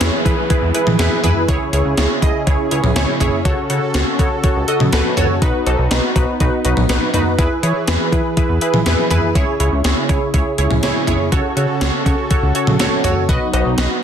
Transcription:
Already playing: E3 E4 G#4 B4, downlifter
0.01 E2 E4 G#4 C#5, snare, closed hi-hat
0.25 E3 E4 G#4 B4, kick, closed hi-hat
0.50 E4 G#4 B4, kick, closed hi-hat
0.62 E2
0.74 E4 G#4 B4, closed hi-hat
0.87 E3, mid tom
0.99 E2 E4 G#4 B4, snare, closed hi-hat
1.24 E2 E4 G#4 B4, closed hi-hat, mid tom
1.48 C#2 C#3 C#4 E4 G#4 C#5, kick, closed hi-hat
1.73 C#2 E4 G#4 C#5, closed hi-hat
1.85 C#2
1.97 C#2 E4 G#4 C#5, snare, closed hi-hat
2.22 C#2 E4 G#4 D#5, kick, closed hi-hat
2.47 C#2 E4 G#4 C#5, kick, closed hi-hat
2.71 C#2 E4 G#4 C#5, closed hi-hat
2.84 C#2, mid tom
2.96 C#2 E4 G#4 C#5, snare, closed hi-hat
3.20 B1 E4 G#4 C#5, closed hi-hat, mid tom
3.45 C#2 F#4 A4 C#5, kick, closed hi-hat
3.70 C#3 F#4 A4 C#5, closed hi-hat
3.94 C#2 F#4 A4 C#5, snare, closed hi-hat
4.19 C#3 F#4 A4 C#5, kick, closed hi-hat
4.44 F#4 A4 C#5, kick, closed hi-hat
4.56 C#2
4.68 F#4 A4 D#5, closed hi-hat
4.80 C#3, mid tom
4.93 C#2 F#4 A4 B4, snare, closed hi-hat
5.17 C#2 F#4 A4 C#5, closed hi-hat, mid tom
5.42 B1 B3 D#4 F#4 B4, kick, closed hi-hat
5.66 B1 D#4 F#4 A4, closed hi-hat, cowbell
5.79 B1
5.91 B1 D#4 F#4 B4, snare, closed hi-hat
6.16 B1 D#4 F#4 B4, kick, closed hi-hat, cowbell
6.40 B1 D#4 F#4 B4, kick, closed hi-hat
6.65 B1 D#4 F#4 B4, closed hi-hat
6.77 B1, mid tom
6.89 B1 D#4 F#4 B4, snare, closed hi-hat
7.14 D#2 D#4 F#4 B4, closed hi-hat, mid tom
7.38 E2 E3 E4 G#4 B4, kick, closed hi-hat
7.63 E3 E4 G#4 C#5, closed hi-hat
7.88 E2 E4 G#4 B4, snare, closed hi-hat
8.12 E3 E4 G#4 B4, kick, closed hi-hat
8.37 E4 G#4 B4, kick, closed hi-hat
8.49 E2
8.61 E4 G#4 B4, closed hi-hat
8.74 E3, mid tom
8.86 E2 E4 G#4 B4, snare, closed hi-hat
9.11 E2 E4 G#4 B4, closed hi-hat, mid tom
9.35 C#2 C#3 C#4 E4 G#4 C#5, kick, closed hi-hat
9.60 C#2 E4 G#4 C#5, closed hi-hat
9.72 C#2
9.84 C#2 E4 G#4 C#5, snare, closed hi-hat
10.09 C#2 E4 G#4 C#5, kick, closed hi-hat
10.34 C#2 E4 G#4 C#5, kick, closed hi-hat
10.58 C#2 E4 G#4 C#5, closed hi-hat
10.71 C#2, mid tom
10.83 C#2 E4 G#4 C#5, snare, closed hi-hat
11.07 B1 E4 G#4 C#5, closed hi-hat, mid tom
11.32 C#2 F#4 A4 C#5, kick, closed hi-hat
11.57 C#3 F#4 A4 C#5, closed hi-hat
11.81 C#2 F#4 A4 C#5, snare, closed hi-hat
12.06 C#3 F#4 A4 C#5, kick, closed hi-hat
12.31 F#4 A4 C#5, kick, closed hi-hat
12.43 C#2
12.55 F#4 A4 C#5, closed hi-hat
12.67 C#3, mid tom
12.79 C#2 F#4 A4 C#5, snare, closed hi-hat
13.04 C#2 F#4 A4 C#5, closed hi-hat, mid tom
13.29 B1 F#3 B3 D#4 F#4 B4 D#5, kick, closed hi-hat
13.53 B1 F#4 B4 D#5, closed hi-hat, cowbell
13.66 B1
13.78 B1 F#4 B4 D#5, snare, closed hi-hat

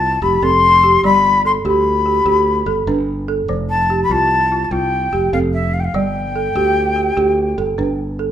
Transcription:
Already playing: C2 F4 A5
0.22 F1 G4 B5
0.42 F1 C4 A4 C6
0.84 G4
1.03 G1 G3 D5 B5
1.45 A4 C6
1.65 D2 G4 B5
2.06 G4
2.26 D2 G4
2.66 G1 A4
2.87 G1 D4 B4
3.28 A4
3.48 F1 F3 C5
3.70 A5
3.90 G4
4.03 B5
4.10 C2 F4 A5
4.52 F4
4.64 A5
4.71 C2 F4 G5
5.12 F1 G4
5.33 F1 C4 A4 F5
5.54 E5
5.74 F5
5.80 G5
5.84 F5
5.94 G1 G3 D5 G5
6.36 A4
6.55 D2 G4
6.96 G4
7.17 D2 G4
7.58 G1 A4
7.78 G1 D4 B4
8.19 A4

